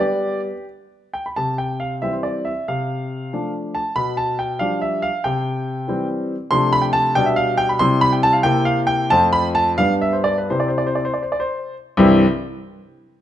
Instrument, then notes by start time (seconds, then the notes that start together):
grand piano
0.00 G3 B3 G4 D5
1.14 G5
1.26 B5
1.36 C3 A5
1.58 G5
1.80 F5
2.02 E3 G3 C4 E5
2.13 C5
2.23 D5
2.45 E5
2.68 C3 F5
3.33 F3 A3 D4
3.75 A5
3.96 B2 B5
4.17 A5
4.39 G5
4.59 F3 G3 D4 F5
4.82 E5
5.02 F5
5.24 C3 G5
5.88 E3 G3 C4
6.51 C3 F3 A3 D4 C6
6.73 B5
6.82 G5
6.93 A5
7.15 B2 G3 D4 G5
7.26 E5
7.36 F5
7.58 G5
7.69 B5
7.79 C3 G3 C4 E4 C6
8.01 B5
8.12 G5
8.23 A5
8.33 F5
8.43 C3 A#3 C4 E4 G5
8.65 F5
8.87 G5
9.10 F2 A3 C4 F4 A5
9.33 B5
9.55 A5
9.78 G2 G3 B3 D4 F5
10.01 E5
10.13 C5
10.24 D5
10.38 B4
10.50 C3 C4 E4 C5
10.60 D5
10.68 C5
10.78 D5
10.87 C5
10.95 D5
11.05 C5
11.14 D5
11.22 C5
11.32 D5
11.40 C5
11.97 C2 G2 E3 G3 C4 E4